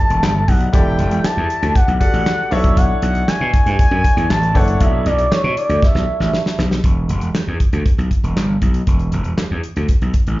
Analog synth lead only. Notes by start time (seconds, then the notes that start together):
Already playing: A5
0.48 F#5
0.73 G5
1.24 A5
1.75 F#5
2.00 F#5
2.51 E5
2.77 F#5
3.02 F#5
3.28 G#5
3.79 G#5
4.30 A5
4.55 F#5
4.81 E5
5.06 D5
5.31 C#5
5.57 D5
5.82 E5